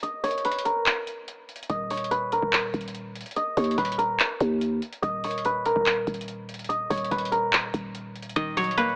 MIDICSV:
0, 0, Header, 1, 5, 480
1, 0, Start_track
1, 0, Tempo, 416667
1, 35, Time_signature, 4, 2, 24, 8
1, 10320, End_track
2, 0, Start_track
2, 0, Title_t, "Guzheng"
2, 0, Program_c, 0, 107
2, 0, Note_on_c, 0, 70, 88
2, 0, Note_on_c, 0, 73, 87
2, 30, Note_on_c, 0, 75, 87
2, 266, Note_off_c, 0, 73, 0
2, 271, Note_on_c, 0, 73, 86
2, 517, Note_on_c, 0, 71, 81
2, 586, Note_off_c, 0, 70, 0
2, 750, Note_on_c, 0, 70, 72
2, 819, Note_off_c, 0, 71, 0
2, 1950, Note_off_c, 0, 75, 0
2, 1955, Note_on_c, 0, 75, 81
2, 2191, Note_off_c, 0, 73, 0
2, 2195, Note_on_c, 0, 73, 90
2, 2431, Note_on_c, 0, 71, 86
2, 2501, Note_off_c, 0, 70, 0
2, 2677, Note_on_c, 0, 70, 85
2, 2746, Note_off_c, 0, 71, 0
2, 3870, Note_off_c, 0, 75, 0
2, 3875, Note_on_c, 0, 75, 89
2, 4113, Note_off_c, 0, 73, 0
2, 4118, Note_on_c, 0, 73, 88
2, 4351, Note_on_c, 0, 71, 86
2, 4420, Note_off_c, 0, 70, 0
2, 4587, Note_on_c, 0, 70, 86
2, 4656, Note_off_c, 0, 71, 0
2, 5783, Note_off_c, 0, 75, 0
2, 5788, Note_on_c, 0, 75, 92
2, 6035, Note_off_c, 0, 73, 0
2, 6039, Note_on_c, 0, 73, 90
2, 6282, Note_on_c, 0, 71, 86
2, 6351, Note_off_c, 0, 70, 0
2, 6514, Note_on_c, 0, 70, 90
2, 6583, Note_off_c, 0, 71, 0
2, 7703, Note_off_c, 0, 75, 0
2, 7708, Note_on_c, 0, 75, 86
2, 7946, Note_off_c, 0, 73, 0
2, 7951, Note_on_c, 0, 73, 86
2, 8195, Note_on_c, 0, 71, 81
2, 8265, Note_off_c, 0, 70, 0
2, 8429, Note_on_c, 0, 70, 73
2, 8498, Note_off_c, 0, 71, 0
2, 9627, Note_off_c, 0, 75, 0
2, 9631, Note_on_c, 0, 75, 84
2, 9867, Note_off_c, 0, 73, 0
2, 9872, Note_on_c, 0, 73, 89
2, 10109, Note_on_c, 0, 71, 84
2, 10178, Note_off_c, 0, 70, 0
2, 10320, Note_off_c, 0, 71, 0
2, 10320, Note_off_c, 0, 73, 0
2, 10320, Note_off_c, 0, 75, 0
2, 10320, End_track
3, 0, Start_track
3, 0, Title_t, "Synth pluck"
3, 0, Program_c, 1, 84
3, 9633, Note_on_c, 1, 51, 101
3, 9875, Note_on_c, 1, 54, 88
3, 10116, Note_on_c, 1, 58, 97
3, 10320, Note_off_c, 1, 51, 0
3, 10320, Note_off_c, 1, 54, 0
3, 10320, Note_off_c, 1, 58, 0
3, 10320, End_track
4, 0, Start_track
4, 0, Title_t, "808-style bass"
4, 0, Program_c, 2, 38
4, 1954, Note_on_c, 2, 27, 106
4, 2761, Note_off_c, 2, 27, 0
4, 2794, Note_on_c, 2, 27, 97
4, 3140, Note_off_c, 2, 27, 0
4, 3154, Note_on_c, 2, 27, 103
4, 3730, Note_off_c, 2, 27, 0
4, 4114, Note_on_c, 2, 39, 102
4, 4344, Note_off_c, 2, 39, 0
4, 4353, Note_on_c, 2, 27, 106
4, 4814, Note_off_c, 2, 27, 0
4, 5075, Note_on_c, 2, 39, 102
4, 5535, Note_off_c, 2, 39, 0
4, 5794, Note_on_c, 2, 27, 104
4, 6601, Note_off_c, 2, 27, 0
4, 6635, Note_on_c, 2, 27, 100
4, 6980, Note_off_c, 2, 27, 0
4, 6994, Note_on_c, 2, 27, 99
4, 7916, Note_off_c, 2, 27, 0
4, 7954, Note_on_c, 2, 27, 104
4, 8185, Note_off_c, 2, 27, 0
4, 8195, Note_on_c, 2, 27, 110
4, 8886, Note_off_c, 2, 27, 0
4, 8915, Note_on_c, 2, 27, 102
4, 9606, Note_off_c, 2, 27, 0
4, 9635, Note_on_c, 2, 27, 106
4, 10320, Note_off_c, 2, 27, 0
4, 10320, End_track
5, 0, Start_track
5, 0, Title_t, "Drums"
5, 35, Note_on_c, 9, 42, 74
5, 150, Note_off_c, 9, 42, 0
5, 275, Note_on_c, 9, 42, 48
5, 275, Note_on_c, 9, 46, 83
5, 355, Note_off_c, 9, 42, 0
5, 355, Note_on_c, 9, 42, 57
5, 390, Note_off_c, 9, 46, 0
5, 435, Note_off_c, 9, 42, 0
5, 435, Note_on_c, 9, 42, 61
5, 515, Note_off_c, 9, 42, 0
5, 515, Note_on_c, 9, 42, 72
5, 594, Note_off_c, 9, 42, 0
5, 594, Note_on_c, 9, 42, 79
5, 674, Note_off_c, 9, 42, 0
5, 674, Note_on_c, 9, 42, 88
5, 754, Note_off_c, 9, 42, 0
5, 754, Note_on_c, 9, 42, 81
5, 869, Note_off_c, 9, 42, 0
5, 994, Note_on_c, 9, 39, 115
5, 994, Note_on_c, 9, 42, 70
5, 1109, Note_off_c, 9, 39, 0
5, 1109, Note_off_c, 9, 42, 0
5, 1234, Note_on_c, 9, 42, 86
5, 1349, Note_off_c, 9, 42, 0
5, 1473, Note_on_c, 9, 42, 89
5, 1588, Note_off_c, 9, 42, 0
5, 1714, Note_on_c, 9, 42, 44
5, 1794, Note_off_c, 9, 42, 0
5, 1794, Note_on_c, 9, 42, 59
5, 1874, Note_off_c, 9, 42, 0
5, 1874, Note_on_c, 9, 42, 73
5, 1953, Note_off_c, 9, 42, 0
5, 1953, Note_on_c, 9, 42, 75
5, 1954, Note_on_c, 9, 36, 121
5, 2068, Note_off_c, 9, 42, 0
5, 2069, Note_off_c, 9, 36, 0
5, 2194, Note_on_c, 9, 42, 65
5, 2194, Note_on_c, 9, 46, 84
5, 2273, Note_off_c, 9, 42, 0
5, 2273, Note_on_c, 9, 42, 65
5, 2309, Note_off_c, 9, 46, 0
5, 2353, Note_off_c, 9, 42, 0
5, 2353, Note_on_c, 9, 42, 65
5, 2434, Note_off_c, 9, 42, 0
5, 2434, Note_on_c, 9, 42, 88
5, 2549, Note_off_c, 9, 42, 0
5, 2674, Note_on_c, 9, 42, 84
5, 2789, Note_off_c, 9, 42, 0
5, 2794, Note_on_c, 9, 36, 87
5, 2909, Note_off_c, 9, 36, 0
5, 2914, Note_on_c, 9, 39, 117
5, 2914, Note_on_c, 9, 42, 74
5, 3029, Note_off_c, 9, 42, 0
5, 3030, Note_off_c, 9, 39, 0
5, 3154, Note_on_c, 9, 36, 85
5, 3154, Note_on_c, 9, 42, 50
5, 3234, Note_off_c, 9, 42, 0
5, 3234, Note_on_c, 9, 42, 66
5, 3270, Note_off_c, 9, 36, 0
5, 3314, Note_off_c, 9, 42, 0
5, 3314, Note_on_c, 9, 42, 92
5, 3394, Note_off_c, 9, 42, 0
5, 3394, Note_on_c, 9, 42, 86
5, 3509, Note_off_c, 9, 42, 0
5, 3634, Note_on_c, 9, 42, 59
5, 3694, Note_off_c, 9, 42, 0
5, 3694, Note_on_c, 9, 42, 59
5, 3754, Note_off_c, 9, 42, 0
5, 3754, Note_on_c, 9, 42, 59
5, 3814, Note_off_c, 9, 42, 0
5, 3814, Note_on_c, 9, 42, 59
5, 3874, Note_off_c, 9, 42, 0
5, 3874, Note_on_c, 9, 42, 75
5, 3989, Note_off_c, 9, 42, 0
5, 4113, Note_on_c, 9, 36, 88
5, 4113, Note_on_c, 9, 42, 50
5, 4113, Note_on_c, 9, 46, 83
5, 4194, Note_off_c, 9, 42, 0
5, 4194, Note_on_c, 9, 42, 53
5, 4228, Note_off_c, 9, 46, 0
5, 4229, Note_off_c, 9, 36, 0
5, 4274, Note_off_c, 9, 42, 0
5, 4274, Note_on_c, 9, 42, 61
5, 4353, Note_off_c, 9, 42, 0
5, 4353, Note_on_c, 9, 36, 101
5, 4353, Note_on_c, 9, 42, 70
5, 4434, Note_off_c, 9, 42, 0
5, 4434, Note_on_c, 9, 42, 77
5, 4469, Note_off_c, 9, 36, 0
5, 4514, Note_off_c, 9, 42, 0
5, 4514, Note_on_c, 9, 42, 87
5, 4594, Note_off_c, 9, 42, 0
5, 4594, Note_on_c, 9, 42, 84
5, 4709, Note_off_c, 9, 42, 0
5, 4833, Note_on_c, 9, 42, 72
5, 4834, Note_on_c, 9, 39, 118
5, 4949, Note_off_c, 9, 39, 0
5, 4949, Note_off_c, 9, 42, 0
5, 5074, Note_on_c, 9, 36, 90
5, 5074, Note_on_c, 9, 42, 90
5, 5189, Note_off_c, 9, 42, 0
5, 5190, Note_off_c, 9, 36, 0
5, 5314, Note_on_c, 9, 42, 89
5, 5429, Note_off_c, 9, 42, 0
5, 5554, Note_on_c, 9, 42, 60
5, 5669, Note_off_c, 9, 42, 0
5, 5674, Note_on_c, 9, 42, 59
5, 5790, Note_off_c, 9, 42, 0
5, 5794, Note_on_c, 9, 36, 116
5, 5794, Note_on_c, 9, 42, 75
5, 5909, Note_off_c, 9, 42, 0
5, 5910, Note_off_c, 9, 36, 0
5, 6034, Note_on_c, 9, 42, 68
5, 6034, Note_on_c, 9, 46, 85
5, 6115, Note_off_c, 9, 42, 0
5, 6115, Note_on_c, 9, 42, 68
5, 6150, Note_off_c, 9, 46, 0
5, 6195, Note_off_c, 9, 42, 0
5, 6195, Note_on_c, 9, 42, 65
5, 6275, Note_off_c, 9, 42, 0
5, 6275, Note_on_c, 9, 42, 85
5, 6390, Note_off_c, 9, 42, 0
5, 6515, Note_on_c, 9, 42, 81
5, 6630, Note_off_c, 9, 42, 0
5, 6634, Note_on_c, 9, 36, 87
5, 6750, Note_off_c, 9, 36, 0
5, 6754, Note_on_c, 9, 39, 121
5, 6754, Note_on_c, 9, 42, 75
5, 6869, Note_off_c, 9, 39, 0
5, 6869, Note_off_c, 9, 42, 0
5, 6994, Note_on_c, 9, 42, 50
5, 6995, Note_on_c, 9, 36, 88
5, 7074, Note_off_c, 9, 42, 0
5, 7074, Note_on_c, 9, 42, 68
5, 7110, Note_off_c, 9, 36, 0
5, 7154, Note_off_c, 9, 42, 0
5, 7154, Note_on_c, 9, 42, 92
5, 7234, Note_off_c, 9, 42, 0
5, 7234, Note_on_c, 9, 42, 89
5, 7349, Note_off_c, 9, 42, 0
5, 7475, Note_on_c, 9, 42, 59
5, 7535, Note_off_c, 9, 42, 0
5, 7535, Note_on_c, 9, 42, 60
5, 7594, Note_off_c, 9, 42, 0
5, 7594, Note_on_c, 9, 42, 57
5, 7655, Note_off_c, 9, 42, 0
5, 7655, Note_on_c, 9, 42, 58
5, 7715, Note_off_c, 9, 42, 0
5, 7715, Note_on_c, 9, 42, 75
5, 7830, Note_off_c, 9, 42, 0
5, 7954, Note_on_c, 9, 36, 92
5, 7955, Note_on_c, 9, 42, 50
5, 7955, Note_on_c, 9, 46, 86
5, 8036, Note_off_c, 9, 42, 0
5, 8036, Note_on_c, 9, 42, 55
5, 8069, Note_off_c, 9, 36, 0
5, 8070, Note_off_c, 9, 46, 0
5, 8116, Note_off_c, 9, 42, 0
5, 8116, Note_on_c, 9, 42, 61
5, 8194, Note_on_c, 9, 36, 99
5, 8196, Note_off_c, 9, 42, 0
5, 8196, Note_on_c, 9, 42, 71
5, 8276, Note_off_c, 9, 42, 0
5, 8276, Note_on_c, 9, 42, 78
5, 8309, Note_off_c, 9, 36, 0
5, 8355, Note_off_c, 9, 42, 0
5, 8355, Note_on_c, 9, 42, 88
5, 8435, Note_off_c, 9, 42, 0
5, 8435, Note_on_c, 9, 42, 84
5, 8550, Note_off_c, 9, 42, 0
5, 8674, Note_on_c, 9, 39, 115
5, 8674, Note_on_c, 9, 42, 72
5, 8789, Note_off_c, 9, 39, 0
5, 8789, Note_off_c, 9, 42, 0
5, 8914, Note_on_c, 9, 42, 88
5, 8915, Note_on_c, 9, 36, 87
5, 9030, Note_off_c, 9, 36, 0
5, 9030, Note_off_c, 9, 42, 0
5, 9155, Note_on_c, 9, 42, 86
5, 9270, Note_off_c, 9, 42, 0
5, 9395, Note_on_c, 9, 42, 42
5, 9475, Note_off_c, 9, 42, 0
5, 9475, Note_on_c, 9, 42, 61
5, 9555, Note_off_c, 9, 42, 0
5, 9555, Note_on_c, 9, 42, 72
5, 9634, Note_off_c, 9, 42, 0
5, 9634, Note_on_c, 9, 42, 75
5, 9635, Note_on_c, 9, 36, 121
5, 9749, Note_off_c, 9, 42, 0
5, 9750, Note_off_c, 9, 36, 0
5, 9875, Note_on_c, 9, 42, 67
5, 9875, Note_on_c, 9, 46, 84
5, 9954, Note_off_c, 9, 42, 0
5, 9954, Note_on_c, 9, 42, 66
5, 9990, Note_off_c, 9, 46, 0
5, 10034, Note_off_c, 9, 42, 0
5, 10034, Note_on_c, 9, 42, 68
5, 10114, Note_off_c, 9, 42, 0
5, 10114, Note_on_c, 9, 42, 89
5, 10230, Note_off_c, 9, 42, 0
5, 10320, End_track
0, 0, End_of_file